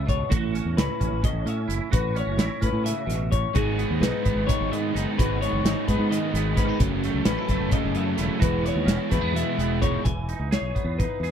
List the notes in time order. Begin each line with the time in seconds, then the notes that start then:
Already playing: C#2 B3 G#4
0.06 B2 C#5, kick, closed hi-hat
0.29 A1 A2 F#4 A4, kick, closed hi-hat
0.54 C#4, closed hi-hat
0.65 E2
0.77 C#2 E4 B4, snare, closed hi-hat
1.00 A1 C#4, kick, closed hi-hat
1.12 A1
1.22 A2 D#5, kick, closed hi-hat
1.33 A1
1.46 A2 C#4 E5, closed hi-hat
1.68 F#1 E4, closed hi-hat
1.91 A1 A2 F#4 B4, kick, closed hi-hat
2.15 C#4 C#5, closed hi-hat
2.27 F#1
2.38 A1 E4, snare, closed hi-hat
2.61 A2 C#4 B4, kick, closed hi-hat
2.73 A2
2.83 C#3 E5, snare, closed hi-hat
3.06 A1 B2, snare, closed hi-hat
3.31 A2 C#5, kick, closed hi-hat
3.54 G#1 G#2 D#3 G#3 B3 D#4 F#4 G#4, kick, closed hi-hat
3.77 G#3 B3 D#4 G#4, closed hi-hat
3.91 D#2
3.99 B1 G#3 B3 D#4 G#4 B4, snare, closed hi-hat
4.24 G#1 G#3 B3 D#4 G#4, kick, closed hi-hat
4.36 G#1
4.47 G#2 D#3 G#3 B3 D#4 G#4 C#5, kick, closed hi-hat
4.61 G#1
4.71 G#2 G#3 B3 D#4 G#4 D#5, closed hi-hat
4.93 F#1 G#3 B3 D#4 G#4, closed hi-hat
5.17 G#1 G#2 D#3 G#3 B3 D#4 F#4 G#4 B4, kick, closed hi-hat
5.41 G#3 B3 D#4 G#4 C#5, closed hi-hat
5.53 F#1
5.64 G#1 G#3 B3 D#4 G#4, snare, closed hi-hat
5.87 G#2 G#3 B3 D#4 G#4 B4, kick, closed hi-hat
5.99 G#2
6.10 G#2 D#3 G#3 B3 D#4 G#4 D#5, closed hi-hat
6.33 G#1 G#3 B3 D#4 G#4, snare, closed hi-hat
6.55 G#3 B3 C#4 D#4 G#4 B4, kick, snare, closed hi-hat
6.69 D#4
6.78 F#1 F#2 C#3 F#3 A3 C#4 A4, kick, closed hi-hat
7.03 F#3 A3 C#4 A4, snare, closed hi-hat
7.14 C#2
7.24 A1 F#3 A3 C#4 A4 B4, snare, closed hi-hat
7.38 E4
7.47 F#1 F#3 A3 C#4 A4, kick, snare, closed hi-hat
7.60 F#1
7.70 F#2 C#3 F#3 A3 C#4 A4 D#5, kick, closed hi-hat
7.85 F#1
7.93 F#2 F#3 A3 C#4 A4 E5, closed hi-hat
8.16 E1 F#3 A3 C#4 E4 A4, snare, closed hi-hat
8.39 E1 E3 G#3 B3 E4 F#4 G#4 B4, kick, closed hi-hat
8.62 B3 E4 G#4 C#5, snare, closed hi-hat
8.75 D#2
8.85 E1 G#3 B3 C#4 E4 G#4, snare, closed hi-hat
9.09 E2 A3 B3 E4 G#4 B4, kick, snare, closed hi-hat
9.21 E2 B3
9.32 B2 E3 G#3 B3 E4 G#4 E5
9.36 snare, closed hi-hat
9.57 E1 B3 E4 G#4, closed hi-hat
9.81 G#3 B3 D#4 E4 G#4 C#5, kick, closed hi-hat
10.04 E1 E3 G#5, kick, closed hi-hat
10.29 D#4, closed hi-hat
10.40 C#2
10.51 G#4 C#5, snare, closed hi-hat
10.62 B1
10.75 B3, kick, closed hi-hat
10.85 E2
10.98 D#4 B4, kick, closed hi-hat
11.20 E2 G#4, snare, closed hi-hat